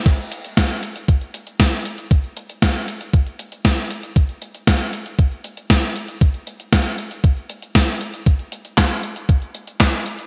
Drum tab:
CC |x---------------|----------------|----------------|----------------|
HH |xxxxxxxxxxxxxxxx|xxxxxxxxxxxxxxxx|xxxxxxxxxxxxxxxx|xxxxxxxxxxxxxxxx|
CP |----------------|----------------|----------------|----------------|
SD |----o-------o---|----o-------o---|----o-------o---|----o-------o---|
BD |o---o---o---o---|o---o---o---o---|o---o---o---o---|o---o---o---o---|

CC |----------------|
HH |xxxxxxxxxxxxxxxx|
CP |----x-------x---|
SD |----o-------o---|
BD |o---o---o---o---|